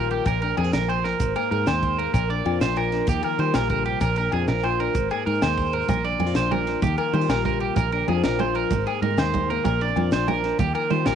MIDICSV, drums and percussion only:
0, 0, Header, 1, 3, 480
1, 0, Start_track
1, 0, Tempo, 312989
1, 408, Time_signature, 12, 3, 24, 8
1, 17100, End_track
2, 0, Start_track
2, 0, Title_t, "Shekere"
2, 409, Note_on_c, 9, 82, 94
2, 563, Note_off_c, 9, 82, 0
2, 1125, Note_on_c, 9, 82, 87
2, 1278, Note_off_c, 9, 82, 0
2, 1843, Note_on_c, 9, 82, 110
2, 1996, Note_off_c, 9, 82, 0
2, 2555, Note_on_c, 9, 82, 95
2, 2708, Note_off_c, 9, 82, 0
2, 2804, Note_on_c, 9, 82, 36
2, 2958, Note_off_c, 9, 82, 0
2, 3288, Note_on_c, 9, 82, 112
2, 3441, Note_off_c, 9, 82, 0
2, 4006, Note_on_c, 9, 82, 108
2, 4160, Note_off_c, 9, 82, 0
2, 4726, Note_on_c, 9, 82, 110
2, 4879, Note_off_c, 9, 82, 0
2, 5435, Note_on_c, 9, 82, 114
2, 5588, Note_off_c, 9, 82, 0
2, 5670, Note_on_c, 9, 82, 36
2, 5824, Note_off_c, 9, 82, 0
2, 6147, Note_on_c, 9, 82, 109
2, 6301, Note_off_c, 9, 82, 0
2, 6401, Note_on_c, 9, 82, 31
2, 6554, Note_off_c, 9, 82, 0
2, 6866, Note_on_c, 9, 82, 112
2, 7019, Note_off_c, 9, 82, 0
2, 7591, Note_on_c, 9, 82, 101
2, 7744, Note_off_c, 9, 82, 0
2, 8197, Note_on_c, 9, 82, 30
2, 8312, Note_off_c, 9, 82, 0
2, 8312, Note_on_c, 9, 82, 96
2, 8465, Note_off_c, 9, 82, 0
2, 8557, Note_on_c, 9, 82, 32
2, 8675, Note_off_c, 9, 82, 0
2, 8675, Note_on_c, 9, 82, 31
2, 8828, Note_off_c, 9, 82, 0
2, 8922, Note_on_c, 9, 82, 33
2, 9036, Note_off_c, 9, 82, 0
2, 9036, Note_on_c, 9, 82, 92
2, 9189, Note_off_c, 9, 82, 0
2, 9749, Note_on_c, 9, 82, 93
2, 9902, Note_off_c, 9, 82, 0
2, 10469, Note_on_c, 9, 82, 94
2, 10623, Note_off_c, 9, 82, 0
2, 11186, Note_on_c, 9, 82, 95
2, 11340, Note_off_c, 9, 82, 0
2, 11438, Note_on_c, 9, 82, 29
2, 11591, Note_off_c, 9, 82, 0
2, 11915, Note_on_c, 9, 82, 92
2, 12069, Note_off_c, 9, 82, 0
2, 12637, Note_on_c, 9, 82, 95
2, 12790, Note_off_c, 9, 82, 0
2, 13359, Note_on_c, 9, 82, 94
2, 13513, Note_off_c, 9, 82, 0
2, 14074, Note_on_c, 9, 82, 89
2, 14227, Note_off_c, 9, 82, 0
2, 14329, Note_on_c, 9, 82, 26
2, 14483, Note_off_c, 9, 82, 0
2, 14800, Note_on_c, 9, 82, 83
2, 14954, Note_off_c, 9, 82, 0
2, 15513, Note_on_c, 9, 82, 87
2, 15666, Note_off_c, 9, 82, 0
2, 16247, Note_on_c, 9, 82, 105
2, 16400, Note_off_c, 9, 82, 0
2, 16964, Note_on_c, 9, 82, 97
2, 17100, Note_off_c, 9, 82, 0
2, 17100, End_track
3, 0, Start_track
3, 0, Title_t, "Drums"
3, 165, Note_on_c, 9, 51, 56
3, 319, Note_off_c, 9, 51, 0
3, 393, Note_on_c, 9, 68, 61
3, 394, Note_on_c, 9, 51, 79
3, 402, Note_on_c, 9, 36, 91
3, 546, Note_off_c, 9, 68, 0
3, 547, Note_off_c, 9, 51, 0
3, 556, Note_off_c, 9, 36, 0
3, 642, Note_on_c, 9, 51, 54
3, 795, Note_off_c, 9, 51, 0
3, 876, Note_on_c, 9, 68, 68
3, 880, Note_on_c, 9, 51, 56
3, 1029, Note_off_c, 9, 68, 0
3, 1034, Note_off_c, 9, 51, 0
3, 1126, Note_on_c, 9, 38, 96
3, 1126, Note_on_c, 9, 51, 80
3, 1280, Note_off_c, 9, 38, 0
3, 1280, Note_off_c, 9, 51, 0
3, 1356, Note_on_c, 9, 68, 66
3, 1374, Note_on_c, 9, 51, 58
3, 1509, Note_off_c, 9, 68, 0
3, 1528, Note_off_c, 9, 51, 0
3, 1613, Note_on_c, 9, 38, 29
3, 1613, Note_on_c, 9, 51, 57
3, 1767, Note_off_c, 9, 38, 0
3, 1767, Note_off_c, 9, 51, 0
3, 1837, Note_on_c, 9, 51, 82
3, 1841, Note_on_c, 9, 36, 108
3, 1990, Note_off_c, 9, 51, 0
3, 1995, Note_off_c, 9, 36, 0
3, 2081, Note_on_c, 9, 51, 61
3, 2083, Note_on_c, 9, 68, 71
3, 2234, Note_off_c, 9, 51, 0
3, 2236, Note_off_c, 9, 68, 0
3, 2327, Note_on_c, 9, 51, 56
3, 2480, Note_off_c, 9, 51, 0
3, 2561, Note_on_c, 9, 38, 97
3, 2561, Note_on_c, 9, 51, 69
3, 2566, Note_on_c, 9, 68, 77
3, 2714, Note_off_c, 9, 38, 0
3, 2714, Note_off_c, 9, 51, 0
3, 2719, Note_off_c, 9, 68, 0
3, 2803, Note_on_c, 9, 36, 66
3, 2805, Note_on_c, 9, 51, 48
3, 2956, Note_off_c, 9, 36, 0
3, 2958, Note_off_c, 9, 51, 0
3, 3055, Note_on_c, 9, 51, 53
3, 3208, Note_off_c, 9, 51, 0
3, 3284, Note_on_c, 9, 36, 105
3, 3285, Note_on_c, 9, 68, 58
3, 3287, Note_on_c, 9, 51, 76
3, 3438, Note_off_c, 9, 36, 0
3, 3438, Note_off_c, 9, 68, 0
3, 3441, Note_off_c, 9, 51, 0
3, 3528, Note_on_c, 9, 51, 50
3, 3682, Note_off_c, 9, 51, 0
3, 3764, Note_on_c, 9, 51, 53
3, 3774, Note_on_c, 9, 68, 72
3, 3917, Note_off_c, 9, 51, 0
3, 3927, Note_off_c, 9, 68, 0
3, 4006, Note_on_c, 9, 38, 98
3, 4006, Note_on_c, 9, 51, 73
3, 4160, Note_off_c, 9, 38, 0
3, 4160, Note_off_c, 9, 51, 0
3, 4239, Note_on_c, 9, 51, 49
3, 4246, Note_on_c, 9, 68, 72
3, 4392, Note_off_c, 9, 51, 0
3, 4399, Note_off_c, 9, 68, 0
3, 4479, Note_on_c, 9, 38, 28
3, 4479, Note_on_c, 9, 51, 54
3, 4632, Note_off_c, 9, 38, 0
3, 4632, Note_off_c, 9, 51, 0
3, 4706, Note_on_c, 9, 51, 83
3, 4720, Note_on_c, 9, 36, 99
3, 4860, Note_off_c, 9, 51, 0
3, 4873, Note_off_c, 9, 36, 0
3, 4950, Note_on_c, 9, 51, 59
3, 4958, Note_on_c, 9, 68, 71
3, 5103, Note_off_c, 9, 51, 0
3, 5112, Note_off_c, 9, 68, 0
3, 5196, Note_on_c, 9, 51, 56
3, 5349, Note_off_c, 9, 51, 0
3, 5427, Note_on_c, 9, 38, 96
3, 5427, Note_on_c, 9, 51, 73
3, 5434, Note_on_c, 9, 68, 77
3, 5580, Note_off_c, 9, 38, 0
3, 5580, Note_off_c, 9, 51, 0
3, 5587, Note_off_c, 9, 68, 0
3, 5666, Note_on_c, 9, 51, 55
3, 5674, Note_on_c, 9, 36, 63
3, 5820, Note_off_c, 9, 51, 0
3, 5828, Note_off_c, 9, 36, 0
3, 5911, Note_on_c, 9, 51, 55
3, 6064, Note_off_c, 9, 51, 0
3, 6145, Note_on_c, 9, 51, 81
3, 6151, Note_on_c, 9, 36, 106
3, 6152, Note_on_c, 9, 68, 61
3, 6298, Note_off_c, 9, 51, 0
3, 6305, Note_off_c, 9, 36, 0
3, 6305, Note_off_c, 9, 68, 0
3, 6379, Note_on_c, 9, 51, 60
3, 6532, Note_off_c, 9, 51, 0
3, 6621, Note_on_c, 9, 68, 62
3, 6626, Note_on_c, 9, 51, 56
3, 6774, Note_off_c, 9, 68, 0
3, 6780, Note_off_c, 9, 51, 0
3, 6870, Note_on_c, 9, 38, 93
3, 6870, Note_on_c, 9, 51, 66
3, 7023, Note_off_c, 9, 38, 0
3, 7023, Note_off_c, 9, 51, 0
3, 7108, Note_on_c, 9, 51, 51
3, 7108, Note_on_c, 9, 68, 76
3, 7261, Note_off_c, 9, 51, 0
3, 7261, Note_off_c, 9, 68, 0
3, 7358, Note_on_c, 9, 51, 54
3, 7511, Note_off_c, 9, 51, 0
3, 7586, Note_on_c, 9, 51, 69
3, 7590, Note_on_c, 9, 36, 102
3, 7740, Note_off_c, 9, 51, 0
3, 7743, Note_off_c, 9, 36, 0
3, 7832, Note_on_c, 9, 51, 52
3, 7839, Note_on_c, 9, 68, 72
3, 7985, Note_off_c, 9, 51, 0
3, 7992, Note_off_c, 9, 68, 0
3, 8078, Note_on_c, 9, 51, 51
3, 8231, Note_off_c, 9, 51, 0
3, 8311, Note_on_c, 9, 68, 74
3, 8314, Note_on_c, 9, 38, 101
3, 8314, Note_on_c, 9, 51, 74
3, 8465, Note_off_c, 9, 68, 0
3, 8467, Note_off_c, 9, 38, 0
3, 8467, Note_off_c, 9, 51, 0
3, 8548, Note_on_c, 9, 51, 51
3, 8550, Note_on_c, 9, 36, 60
3, 8702, Note_off_c, 9, 51, 0
3, 8703, Note_off_c, 9, 36, 0
3, 8785, Note_on_c, 9, 51, 52
3, 8938, Note_off_c, 9, 51, 0
3, 9021, Note_on_c, 9, 51, 79
3, 9027, Note_on_c, 9, 36, 101
3, 9031, Note_on_c, 9, 68, 67
3, 9036, Note_on_c, 9, 62, 98
3, 9036, Note_on_c, 9, 63, 99
3, 9036, Note_on_c, 9, 64, 30
3, 9175, Note_off_c, 9, 51, 0
3, 9180, Note_off_c, 9, 36, 0
3, 9184, Note_off_c, 9, 68, 0
3, 9189, Note_off_c, 9, 62, 0
3, 9189, Note_off_c, 9, 63, 0
3, 9189, Note_off_c, 9, 64, 0
3, 9267, Note_on_c, 9, 51, 51
3, 9280, Note_on_c, 9, 64, 29
3, 9387, Note_off_c, 9, 64, 0
3, 9387, Note_on_c, 9, 64, 74
3, 9420, Note_off_c, 9, 51, 0
3, 9500, Note_on_c, 9, 51, 59
3, 9506, Note_on_c, 9, 68, 60
3, 9509, Note_on_c, 9, 62, 99
3, 9509, Note_on_c, 9, 63, 93
3, 9541, Note_off_c, 9, 64, 0
3, 9654, Note_off_c, 9, 51, 0
3, 9660, Note_off_c, 9, 68, 0
3, 9662, Note_off_c, 9, 62, 0
3, 9662, Note_off_c, 9, 63, 0
3, 9736, Note_on_c, 9, 38, 96
3, 9736, Note_on_c, 9, 51, 76
3, 9890, Note_off_c, 9, 38, 0
3, 9890, Note_off_c, 9, 51, 0
3, 9986, Note_on_c, 9, 68, 68
3, 9989, Note_on_c, 9, 51, 58
3, 9995, Note_on_c, 9, 62, 100
3, 9995, Note_on_c, 9, 63, 101
3, 9995, Note_on_c, 9, 64, 98
3, 10140, Note_off_c, 9, 68, 0
3, 10143, Note_off_c, 9, 51, 0
3, 10149, Note_off_c, 9, 62, 0
3, 10149, Note_off_c, 9, 63, 0
3, 10149, Note_off_c, 9, 64, 0
3, 10228, Note_on_c, 9, 38, 29
3, 10228, Note_on_c, 9, 51, 57
3, 10381, Note_off_c, 9, 38, 0
3, 10381, Note_off_c, 9, 51, 0
3, 10460, Note_on_c, 9, 51, 83
3, 10464, Note_on_c, 9, 36, 105
3, 10465, Note_on_c, 9, 62, 98
3, 10465, Note_on_c, 9, 63, 102
3, 10465, Note_on_c, 9, 64, 99
3, 10614, Note_off_c, 9, 51, 0
3, 10618, Note_off_c, 9, 36, 0
3, 10618, Note_off_c, 9, 62, 0
3, 10618, Note_off_c, 9, 63, 0
3, 10618, Note_off_c, 9, 64, 0
3, 10699, Note_on_c, 9, 51, 54
3, 10707, Note_on_c, 9, 68, 69
3, 10716, Note_on_c, 9, 64, 32
3, 10853, Note_off_c, 9, 51, 0
3, 10860, Note_off_c, 9, 68, 0
3, 10870, Note_off_c, 9, 64, 0
3, 10943, Note_on_c, 9, 62, 100
3, 10943, Note_on_c, 9, 63, 95
3, 10943, Note_on_c, 9, 64, 30
3, 10953, Note_on_c, 9, 51, 54
3, 11064, Note_off_c, 9, 64, 0
3, 11064, Note_on_c, 9, 64, 68
3, 11096, Note_off_c, 9, 62, 0
3, 11096, Note_off_c, 9, 63, 0
3, 11106, Note_off_c, 9, 51, 0
3, 11186, Note_on_c, 9, 68, 74
3, 11190, Note_on_c, 9, 38, 101
3, 11190, Note_on_c, 9, 51, 76
3, 11217, Note_off_c, 9, 64, 0
3, 11340, Note_off_c, 9, 68, 0
3, 11344, Note_off_c, 9, 38, 0
3, 11344, Note_off_c, 9, 51, 0
3, 11424, Note_on_c, 9, 62, 92
3, 11424, Note_on_c, 9, 63, 89
3, 11429, Note_on_c, 9, 36, 64
3, 11432, Note_on_c, 9, 51, 48
3, 11543, Note_on_c, 9, 64, 30
3, 11577, Note_off_c, 9, 62, 0
3, 11577, Note_off_c, 9, 63, 0
3, 11583, Note_off_c, 9, 36, 0
3, 11585, Note_off_c, 9, 51, 0
3, 11662, Note_on_c, 9, 51, 49
3, 11663, Note_off_c, 9, 64, 0
3, 11663, Note_on_c, 9, 64, 93
3, 11815, Note_off_c, 9, 51, 0
3, 11816, Note_off_c, 9, 64, 0
3, 11901, Note_on_c, 9, 51, 70
3, 11902, Note_on_c, 9, 62, 90
3, 11902, Note_on_c, 9, 63, 92
3, 11902, Note_on_c, 9, 64, 30
3, 11908, Note_on_c, 9, 68, 60
3, 11909, Note_on_c, 9, 36, 107
3, 12055, Note_off_c, 9, 51, 0
3, 12056, Note_off_c, 9, 62, 0
3, 12056, Note_off_c, 9, 63, 0
3, 12056, Note_off_c, 9, 64, 0
3, 12062, Note_off_c, 9, 68, 0
3, 12063, Note_off_c, 9, 36, 0
3, 12149, Note_on_c, 9, 51, 52
3, 12149, Note_on_c, 9, 64, 29
3, 12266, Note_off_c, 9, 64, 0
3, 12266, Note_on_c, 9, 64, 68
3, 12303, Note_off_c, 9, 51, 0
3, 12390, Note_on_c, 9, 62, 92
3, 12390, Note_on_c, 9, 63, 88
3, 12391, Note_on_c, 9, 51, 52
3, 12391, Note_on_c, 9, 68, 60
3, 12419, Note_off_c, 9, 64, 0
3, 12544, Note_off_c, 9, 62, 0
3, 12544, Note_off_c, 9, 63, 0
3, 12544, Note_off_c, 9, 68, 0
3, 12545, Note_off_c, 9, 51, 0
3, 12632, Note_on_c, 9, 38, 95
3, 12632, Note_on_c, 9, 51, 73
3, 12785, Note_off_c, 9, 38, 0
3, 12785, Note_off_c, 9, 51, 0
3, 12867, Note_on_c, 9, 68, 72
3, 12870, Note_on_c, 9, 51, 57
3, 12880, Note_on_c, 9, 62, 101
3, 12880, Note_on_c, 9, 63, 92
3, 12880, Note_on_c, 9, 64, 92
3, 13020, Note_off_c, 9, 68, 0
3, 13023, Note_off_c, 9, 51, 0
3, 13033, Note_off_c, 9, 62, 0
3, 13033, Note_off_c, 9, 63, 0
3, 13033, Note_off_c, 9, 64, 0
3, 13111, Note_on_c, 9, 51, 57
3, 13265, Note_off_c, 9, 51, 0
3, 13350, Note_on_c, 9, 51, 85
3, 13355, Note_on_c, 9, 36, 98
3, 13367, Note_on_c, 9, 62, 99
3, 13367, Note_on_c, 9, 63, 102
3, 13367, Note_on_c, 9, 64, 98
3, 13503, Note_off_c, 9, 51, 0
3, 13509, Note_off_c, 9, 36, 0
3, 13521, Note_off_c, 9, 62, 0
3, 13521, Note_off_c, 9, 63, 0
3, 13521, Note_off_c, 9, 64, 0
3, 13596, Note_on_c, 9, 51, 56
3, 13609, Note_on_c, 9, 64, 30
3, 13609, Note_on_c, 9, 68, 68
3, 13749, Note_off_c, 9, 51, 0
3, 13763, Note_off_c, 9, 64, 0
3, 13763, Note_off_c, 9, 68, 0
3, 13838, Note_on_c, 9, 51, 58
3, 13841, Note_on_c, 9, 62, 96
3, 13841, Note_on_c, 9, 63, 92
3, 13841, Note_on_c, 9, 64, 28
3, 13965, Note_off_c, 9, 64, 0
3, 13965, Note_on_c, 9, 64, 78
3, 13991, Note_off_c, 9, 51, 0
3, 13995, Note_off_c, 9, 62, 0
3, 13995, Note_off_c, 9, 63, 0
3, 14073, Note_on_c, 9, 68, 74
3, 14081, Note_on_c, 9, 38, 104
3, 14081, Note_on_c, 9, 51, 74
3, 14082, Note_off_c, 9, 64, 0
3, 14082, Note_on_c, 9, 64, 31
3, 14226, Note_off_c, 9, 68, 0
3, 14235, Note_off_c, 9, 38, 0
3, 14235, Note_off_c, 9, 51, 0
3, 14235, Note_off_c, 9, 64, 0
3, 14320, Note_on_c, 9, 62, 99
3, 14320, Note_on_c, 9, 63, 88
3, 14324, Note_on_c, 9, 36, 63
3, 14330, Note_on_c, 9, 51, 53
3, 14453, Note_on_c, 9, 64, 30
3, 14473, Note_off_c, 9, 62, 0
3, 14473, Note_off_c, 9, 63, 0
3, 14477, Note_off_c, 9, 36, 0
3, 14483, Note_off_c, 9, 51, 0
3, 14569, Note_off_c, 9, 64, 0
3, 14569, Note_on_c, 9, 64, 94
3, 14570, Note_on_c, 9, 51, 57
3, 14723, Note_off_c, 9, 51, 0
3, 14723, Note_off_c, 9, 64, 0
3, 14794, Note_on_c, 9, 68, 63
3, 14797, Note_on_c, 9, 62, 101
3, 14797, Note_on_c, 9, 63, 100
3, 14797, Note_on_c, 9, 64, 32
3, 14798, Note_on_c, 9, 51, 73
3, 14802, Note_on_c, 9, 36, 96
3, 14947, Note_off_c, 9, 68, 0
3, 14950, Note_off_c, 9, 62, 0
3, 14950, Note_off_c, 9, 63, 0
3, 14950, Note_off_c, 9, 64, 0
3, 14951, Note_off_c, 9, 51, 0
3, 14955, Note_off_c, 9, 36, 0
3, 15045, Note_on_c, 9, 51, 53
3, 15047, Note_on_c, 9, 64, 31
3, 15164, Note_off_c, 9, 64, 0
3, 15164, Note_on_c, 9, 64, 82
3, 15199, Note_off_c, 9, 51, 0
3, 15274, Note_on_c, 9, 68, 71
3, 15280, Note_on_c, 9, 62, 98
3, 15280, Note_on_c, 9, 63, 99
3, 15287, Note_on_c, 9, 51, 56
3, 15317, Note_off_c, 9, 64, 0
3, 15428, Note_off_c, 9, 68, 0
3, 15434, Note_off_c, 9, 62, 0
3, 15434, Note_off_c, 9, 63, 0
3, 15441, Note_off_c, 9, 51, 0
3, 15520, Note_on_c, 9, 38, 99
3, 15520, Note_on_c, 9, 51, 66
3, 15673, Note_off_c, 9, 38, 0
3, 15673, Note_off_c, 9, 51, 0
3, 15760, Note_on_c, 9, 68, 74
3, 15765, Note_on_c, 9, 51, 51
3, 15768, Note_on_c, 9, 62, 101
3, 15768, Note_on_c, 9, 63, 108
3, 15768, Note_on_c, 9, 64, 101
3, 15914, Note_off_c, 9, 68, 0
3, 15918, Note_off_c, 9, 51, 0
3, 15921, Note_off_c, 9, 62, 0
3, 15921, Note_off_c, 9, 63, 0
3, 15921, Note_off_c, 9, 64, 0
3, 16007, Note_on_c, 9, 38, 28
3, 16007, Note_on_c, 9, 51, 50
3, 16160, Note_off_c, 9, 38, 0
3, 16160, Note_off_c, 9, 51, 0
3, 16238, Note_on_c, 9, 51, 78
3, 16243, Note_on_c, 9, 36, 98
3, 16244, Note_on_c, 9, 62, 105
3, 16244, Note_on_c, 9, 63, 103
3, 16244, Note_on_c, 9, 64, 102
3, 16392, Note_off_c, 9, 51, 0
3, 16397, Note_off_c, 9, 36, 0
3, 16398, Note_off_c, 9, 62, 0
3, 16398, Note_off_c, 9, 63, 0
3, 16398, Note_off_c, 9, 64, 0
3, 16483, Note_on_c, 9, 68, 66
3, 16486, Note_on_c, 9, 51, 58
3, 16490, Note_on_c, 9, 64, 34
3, 16636, Note_off_c, 9, 68, 0
3, 16640, Note_off_c, 9, 51, 0
3, 16643, Note_off_c, 9, 64, 0
3, 16723, Note_on_c, 9, 51, 52
3, 16724, Note_on_c, 9, 62, 102
3, 16724, Note_on_c, 9, 63, 106
3, 16724, Note_on_c, 9, 64, 31
3, 16843, Note_off_c, 9, 64, 0
3, 16843, Note_on_c, 9, 64, 73
3, 16877, Note_off_c, 9, 51, 0
3, 16878, Note_off_c, 9, 62, 0
3, 16878, Note_off_c, 9, 63, 0
3, 16960, Note_on_c, 9, 38, 101
3, 16960, Note_on_c, 9, 51, 70
3, 16972, Note_on_c, 9, 68, 75
3, 16997, Note_off_c, 9, 64, 0
3, 17100, Note_off_c, 9, 38, 0
3, 17100, Note_off_c, 9, 51, 0
3, 17100, Note_off_c, 9, 68, 0
3, 17100, End_track
0, 0, End_of_file